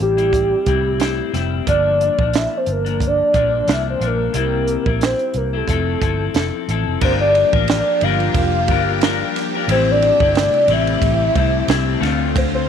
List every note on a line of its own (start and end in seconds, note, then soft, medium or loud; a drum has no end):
0.00 0.54 A1 medium
0.00 0.19 G3 soft
0.00 0.17 C4 soft
0.00 0.16 E4 medium
0.00 1.31 G4 medium
0.00 closed hi-hat medium
0.17 0.66 G3 soft
0.17 0.66 C4 soft
0.17 0.66 E4 soft
0.17 closed hi-hat soft
0.33 kick medium
0.33 closed hi-hat medium
0.66 1.20 C2 medium
0.66 0.98 A2 medium
0.66 0.99 G3 medium
0.66 0.99 C4 medium
0.66 1.00 E4 medium
0.66 kick medium
0.66 closed hi-hat medium
0.99 1.31 A2 medium
0.99 1.32 G3 medium
0.99 1.33 C4 medium
0.99 1.33 E4 medium
0.99 snare medium
0.99 closed hi-hat medium
1.32 1.60 F1 loud
1.32 1.66 A2 medium
1.32 1.67 G3 medium
1.32 1.67 C4 medium
1.32 1.67 E4 medium
1.32 snare soft
1.32 closed hi-hat medium
1.67 2.08 G1 loud
1.67 2.19 G2 medium
1.67 2.19 F3 medium
1.67 2.19 A#3 medium
1.67 2.18 D4 medium
1.67 2.39 D5 loud
1.67 kick loud
1.67 closed hi-hat loud
2.01 closed hi-hat medium
2.19 2.45 A#1 medium
2.19 2.86 F3 soft
2.19 2.85 A#3 soft
2.19 2.84 D4 medium
2.19 kick medium
2.34 2.59 E5 loud
2.34 snare loud
2.34 closed hi-hat medium
2.57 2.73 C5 medium
2.66 3.20 G1 medium
2.66 closed hi-hat medium
2.72 3.09 A#4 loud
2.85 3.33 F3 soft
2.85 3.34 A#3 soft
2.85 3.34 D4 soft
2.85 closed hi-hat soft
3.00 kick medium
3.00 closed hi-hat medium
3.07 3.71 D5 loud
3.34 3.61 A#1 medium
3.34 3.66 G2 medium
3.34 3.67 F3 medium
3.34 3.67 A#3 medium
3.34 3.68 D4 medium
3.34 kick medium
3.34 closed hi-hat medium
3.67 3.95 C2 medium
3.67 3.99 G2 medium
3.67 4.00 F3 medium
3.67 4.00 A#3 medium
3.67 4.01 D4 medium
3.67 snare loud
3.67 closed hi-hat medium
3.73 3.87 E5 medium
3.90 4.08 C5 medium
4.00 4.28 A#1 medium
4.00 4.34 G2 medium
4.00 4.34 F3 medium
4.00 4.34 A#3 medium
4.00 4.35 D4 medium
4.00 closed hi-hat medium
4.07 4.37 A#4 medium
4.33 4.76 C2 loud
4.33 4.86 C3 medium
4.33 4.86 G3 medium
4.33 4.86 C4 medium
4.33 4.85 E4 medium
4.33 closed hi-hat loud
4.38 5.06 A#4 medium
4.68 closed hi-hat medium
4.86 5.13 A#1 medium
4.86 5.54 G3 soft
4.86 5.53 C4 soft
4.86 5.52 E4 medium
4.86 kick medium
5.01 5.39 C5 medium
5.01 snare loud
5.01 closed hi-hat medium
5.19 closed hi-hat soft
5.34 5.61 C2 medium
5.34 5.58 A#4 medium
5.34 closed hi-hat medium
5.53 5.68 G3 soft
5.53 5.68 C4 medium
5.53 5.68 E4 medium
5.53 6.55 A4 medium
5.67 5.94 F1 medium
5.67 5.99 F3 medium
5.67 6.00 C4 medium
5.67 6.01 E4 medium
5.67 6.01 A4 medium
5.67 kick medium
5.67 closed hi-hat medium
6.01 6.28 G1 medium
6.01 6.33 F3 medium
6.01 6.34 C4 medium
6.01 6.35 E4 medium
6.01 6.35 A4 medium
6.01 kick medium
6.01 closed hi-hat medium
6.34 6.49 F1 medium
6.34 6.67 F3 medium
6.34 6.69 C4 medium
6.34 6.69 E4 medium
6.34 6.69 A4 medium
6.34 snare loud
6.34 closed hi-hat medium
6.68 6.83 A1 medium
6.68 7.01 F3 medium
6.68 7.02 C4 medium
6.68 7.02 E4 medium
6.68 7.02 A4 medium
6.68 closed hi-hat medium
7.01 7.43 G1 loud
7.01 9.66 F3 medium
7.01 7.53 G3 medium
7.01 9.66 A#3 medium
7.01 7.54 D4 medium
7.01 7.53 F4 medium
7.01 11.98 G4 medium
7.01 7.52 A#4 medium
7.01 7.12 C5 medium
7.01 kick loud
7.01 crash loud
7.20 7.65 D5 loud
7.35 ride medium
7.53 7.80 A1 medium
7.53 8.02 D4 soft
7.53 8.02 F4 soft
7.53 8.02 A#4 medium
7.53 kick loud
7.68 8.05 D5 medium
7.68 snare loud
7.68 ride medium
8.01 8.29 G1 loud
8.01 8.68 G3 medium
8.01 8.69 D4 medium
8.01 8.69 F4 medium
8.01 8.70 A#4 medium
8.01 9.36 F5 loud
8.01 ride medium
8.20 ride soft
8.34 8.68 F1 medium
8.34 kick loud
8.34 ride medium
8.68 9.22 G1 medium
8.68 9.01 G3 medium
8.68 9.02 D4 medium
8.68 9.03 F4 medium
8.68 9.03 A#4 medium
8.68 kick medium
8.68 ride medium
9.01 9.54 G3 medium
9.01 9.54 D4 medium
9.01 9.55 F4 medium
9.01 9.54 A#4 medium
9.01 snare loud
9.01 ride medium
9.36 snare soft
9.36 ride medium
9.55 9.70 D4 soft
9.55 9.70 F4 soft
9.55 9.69 A#4 medium
9.67 10.10 A1 loud
9.67 10.21 A2 medium
9.67 11.99 C3 medium
9.67 10.21 G3 medium
9.67 11.99 A3 medium
9.67 10.21 C4 loud
9.67 10.20 E4 medium
9.67 9.93 C5 medium
9.67 ride medium
9.91 10.37 D5 loud
10.02 ride medium
10.20 10.47 G1 medium
10.20 10.69 G3 soft
10.20 10.70 C4 medium
10.20 10.69 E4 medium
10.20 kick loud
10.35 10.74 D5 loud
10.35 snare loud
10.35 ride medium
10.54 ride soft
10.68 10.95 A1 loud
10.68 11.34 A2 medium
10.68 11.35 G3 medium
10.68 11.37 C4 medium
10.68 11.36 E4 medium
10.68 ride medium
10.73 12.04 E5 loud
10.87 ride soft
11.02 11.29 A1 medium
11.02 kick medium
11.02 ride medium
11.35 11.62 C2 medium
11.35 11.67 A2 medium
11.35 11.67 G3 medium
11.35 11.68 C4 medium
11.35 11.68 E4 medium
11.35 kick loud
11.35 ride medium
11.68 11.95 C2 loud
11.68 12.02 A2 medium
11.68 12.00 G3 medium
11.68 12.00 C4 medium
11.68 12.01 E4 medium
11.68 snare loud
11.68 ride medium
12.00 12.69 D2 loud
12.00 12.69 D3 medium
12.00 12.69 A3 medium
12.00 12.69 C4 medium
12.00 12.69 F4 loud
12.00 12.69 F4 medium
12.00 snare soft
12.00 ride medium
12.36 12.45 C5 loud
12.36 kick loud
12.36 ride medium
12.55 12.69 C5 loud